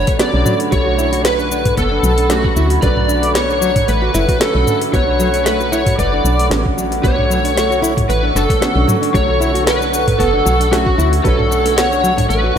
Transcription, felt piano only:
Already playing: D3 F#3 A3 C#5
0.18 D3 F#3 A3 C#4
0.70 D3 F#3 A3
0.74 C#5
2.29 D3 F#3 A3 C#4
2.81 D3 F#3 A3
2.85 B4
4.40 D3 F#3 A3 C#4
4.91 D3 F#3 A3 B4
6.50 D3 F#3 A3 C#4
7.01 D3 F#3 A3 C#5
8.60 D3 F#3 A3 C#4
9.12 D3 F#3 A3
9.16 C#5
10.71 D3 F#3 A3 C#4
11.23 D3 F#3 A3
11.27 C#5

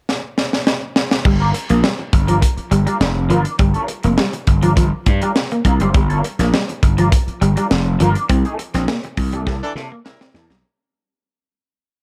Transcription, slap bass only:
1.25 G1
1.70 A#1
2.13 G1
2.57 muted slap bass stroke
2.71 G1
3.00 F1
3.30 G1
3.59 G1
4.04 F1
4.47 G1
4.77 G1
5.07 G2
5.65 C2
5.80 F#1
5.95 G1
6.39 A#1
6.83 G1
7.28 muted slap bass stroke
7.41 G1
7.71 F1
8.01 G1
8.29 C2
8.74 A#1
9.17 C2
9.47 C2
9.75 C3
10.34 E2
10.50 B1

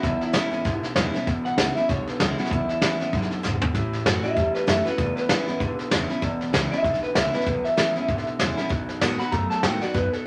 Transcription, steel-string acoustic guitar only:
0.04 E2
0.33 E3 G#3 C#4 E4
0.51 C#4 E4
0.65 B2
0.96 E3 G#3 C#4 E4
1.13 C#4 E4
1.27 E2
1.58 E3 G#3 C#4 E4
1.77 C#4 E4
1.90 B2
2.20 E3 G#3 C#4 E4
2.39 C#4 E4
2.53 E2
2.82 E3 G#3 C#4 E4
3.00 C#4 E4
3.13 F#2
3.43 G#2
3.75 A2
4.06 E3 A3 C#4 F#4
4.23 C#4 F#4
4.37 E2
4.67 E3 A3 C#4 F#4
4.86 C#4 F#4
4.98 E2
5.30 E3 G#3 C#4 E4
5.48 C#4 E4
5.61 B2
5.91 E3 G#3 C#4 E4
6.09 C#4 E4
6.22 E2
6.53 E3 G#3 C#4 E4
6.72 C#4 E4
6.85 B2
7.16 E3 G#3 C#4 E4
7.34 C#4 E4
7.47 E2
7.77 E3 G#3 C#4 E4
7.96 C#4 E4
8.09 B2
8.39 E3 G#3 C#4 E4
8.57 C#4 E4
8.69 B2
9.01 D#3 G#3 B3 F#4
9.19 B3 F#4
9.32 F#2
9.63 D#3 G#3 B3 F#4
9.81 B3 F#4
9.94 B2

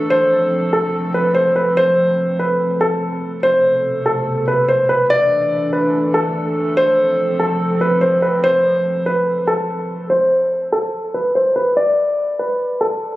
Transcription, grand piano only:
0.10 C5
0.73 A4
1.14 B4
1.35 C5
1.56 B4
1.77 C5
2.39 B4
2.81 A4
3.43 C5
4.06 A4
4.48 B4
4.69 C5
4.89 B4
5.10 D5
5.73 B4
6.14 A4
6.77 C5
7.40 A4
7.81 B4
8.01 C5
8.22 B4
8.44 C5
9.06 B4
9.47 A4
10.10 C5
10.72 A4
11.14 B4
11.35 C5
11.56 B4
11.77 D5
12.39 B4
12.81 A4

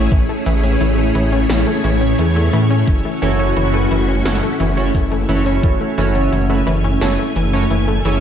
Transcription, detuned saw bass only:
0.12 A1
0.47 A1
0.81 A1
1.15 A1
1.50 A1
1.84 A1
2.19 E2
2.53 A2
2.88 F#1
3.22 F#1
3.57 F#1
3.91 F#1
4.26 F#1
4.60 F#1
4.94 F#1
5.29 F#1
5.64 F#1
5.98 F#1
6.32 F#1
6.67 F#1
7.02 F#1
7.36 F#1
7.70 F#1
8.05 F#1

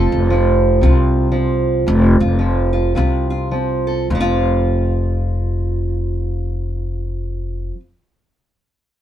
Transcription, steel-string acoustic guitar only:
Already playing: F2 F3 F4 A4
0.30 F3
0.81 C3 F4
1.32 F3
1.86 F2
2.21 F4
2.39 F3
2.73 F4
2.95 C3 F4
3.30 F4
3.51 F3
3.87 A4
4.10 F2
4.15 F3
4.21 F4

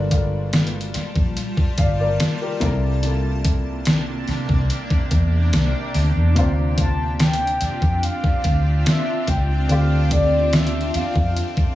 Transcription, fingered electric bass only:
Already playing: G1
0.95 muted fingered electric bass stroke
1.16 A#1
1.78 G1
2.61 C2
4.28 muted fingered electric bass stroke
4.49 C2
5.11 E2
5.53 C2
5.95 D2
6.16 E2
6.36 D2
7.62 muted fingered electric bass stroke
7.82 F2
8.45 D2
9.28 C#2
9.70 D2
10.95 muted fingered electric bass stroke
11.15 F2

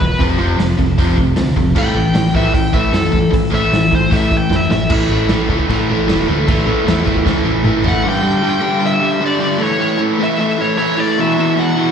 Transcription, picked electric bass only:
0.01 E1
0.21 F1
0.39 F1
0.58 F1
0.79 F1
0.98 F1
1.18 F1
1.37 D2
1.56 F1
1.77 A1
1.95 A1
2.16 A1
2.35 A1
2.54 A1
2.73 A1
2.93 F#2
3.14 A1
3.33 A1
3.53 A1
3.73 A1
3.92 A1
4.12 A1
4.32 A1
4.51 F#2
4.71 A1
4.90 A1
5.10 A1
5.30 A1
5.49 C#2
5.69 A1
5.91 A1
6.10 E1
6.28 D2
6.48 A1
6.68 A1
6.88 E2
7.07 E1
7.26 C#2
7.46 A1
7.64 A1
7.85 A1

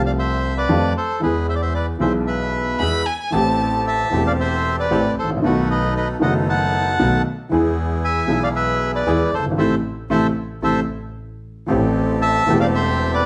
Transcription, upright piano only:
Already playing: C2 C3 F3 A3 C4 G4
0.69 F2 F3 A3 C4 G4
1.20 E2 E3 G#3 B3 G#4
1.98 B1 B2 E3 G#3 B3 G#4
2.79 E2 E3 G#3 B3 G#4
3.30 A1 A2 E3 A3 C4
3.35 G4
4.10 E1 E2 E3 A3 C4
4.14 G4
4.90 A1 A2 E3 A3 C4 G4
5.24 G#1
5.30 A1
5.37 A#1
5.42 B1 B2 D#3 A3 B3
5.46 F#4
6.19 F#1 F#2 D#3 A3 B3
6.24 F#4
6.99 B1 B2 D#3 A3 B3 F#4
7.51 E2 E3 G#3 B3 G#4
8.26 B1 B2 E3 G#3 B3 G#4
9.06 E2 E3 G#3 B3 G#4
9.39 F#1
9.45 G1
9.51 G#1
9.58 C3 E3 A3
10.10 C3 E3 A3
10.62 C3 E3 A3
11.66 A1 A2 E3 A3 C4
11.70 G4
12.46 E1 E2 E3 A3 C4 G4

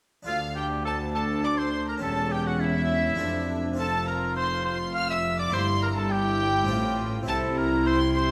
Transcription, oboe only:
0.26 F4
0.56 G4
0.85 A4
1.15 A4
1.44 D5
1.58 C5
1.89 A#4
2.02 A4
2.32 G4
2.47 F#4
2.60 E4
3.79 A4
4.08 A#4
4.37 C5
4.65 C5
4.94 F5
5.10 E5
5.39 D5
5.53 C5
5.83 A#4
5.97 A4
6.12 G4
7.29 A4
7.58 A#4
7.86 C5
8.15 C5

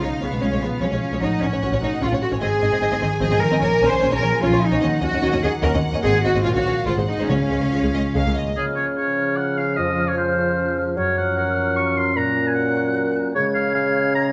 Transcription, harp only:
Already playing: G#3 C#4 F4
0.02 B2
0.23 G#3
0.43 F4
0.62 F3
0.82 F#3
1.03 F3
1.23 A2
1.43 C#4
1.63 F#4
1.83 A3
2.04 C4
2.23 A3
2.43 G#2
2.63 D#4
3.02 D#3
3.22 F3
3.42 D#3
3.62 A#2
3.83 C#4
4.03 G#4
4.23 F3
4.43 F#3
4.63 F3
4.83 D#3
5.03 D#4
5.23 F#4
5.44 A#3
5.64 C4
5.84 A#3
6.04 G#2
6.24 F#4 C5
6.44 A#2
6.65 F4 C#5
6.86 G#2
7.08 F#4 G#4
7.30 C#3
7.51 C#4
7.72 F4
7.94 G#3
8.16 A#3
8.37 G#3
8.57 C#3
8.77 C#4
8.98 G#4
9.18 C#5
9.38 G#4
9.58 F4
9.78 F2
9.98 C#4
10.18 G#4
10.38 C#5
10.59 G#4
10.78 F4
10.97 F#2
11.17 C#4
11.37 A#4
11.57 C#5
11.77 A#4
11.97 F4
12.17 A#2
12.37 C#4
12.57 A#4
12.76 C#5
12.96 A#4
13.16 F#4
13.36 C#3
13.55 C#4
13.75 G#4
13.95 C#5
14.15 G#4

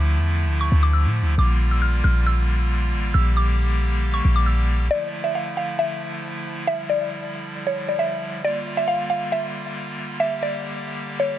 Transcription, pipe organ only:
Already playing: D3 F3 A3 E4
1.38 D3 G3 A#3 F4
3.14 G4
4.91 D3 F3 A3 E4
6.67 G3
8.44 G3 A#3 F4
10.20 G4

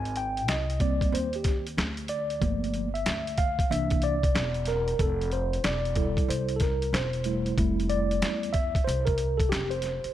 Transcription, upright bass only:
Already playing: G#1
0.48 C2
1.01 muted upright bass stroke
1.12 D#2
1.77 D2
2.42 G1
3.06 D2
3.59 muted upright bass stroke
3.71 C2
4.35 E1
4.99 F1
5.64 E1
6.17 muted upright bass stroke
6.28 C2
6.93 E1
7.58 F1
8.22 E2
8.75 muted upright bass stroke
8.87 C2
9.52 F1
10.05 muted upright bass stroke

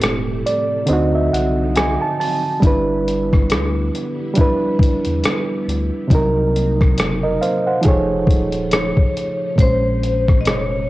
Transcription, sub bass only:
0.02 E1
0.89 D2
1.33 C2
2.63 G1
3.51 D2
5.06 E2
5.68 D2
6.11 C2
6.99 F#1
7.86 F1
8.28 D#1
9.59 A#1
10.46 F1

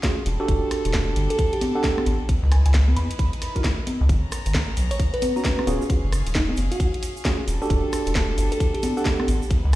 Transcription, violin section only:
Already playing: C#4 G#4 F5
0.26 G3 D4 A4
2.29 D#4 E4 B4
4.09 B3 C#4 A#5
5.67 G#4 F5
7.48 G3 D4 A4
9.51 D#4 E4 B4

